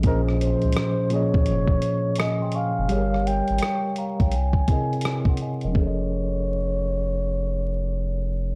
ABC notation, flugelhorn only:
X:1
M:4/4
L:1/8
Q:"Swing 16ths" 1/4=84
K:Fm
V:1 name="Flugelhorn"
B c2 d3 e f- | f g2 z ^g3 z | ^c8 |]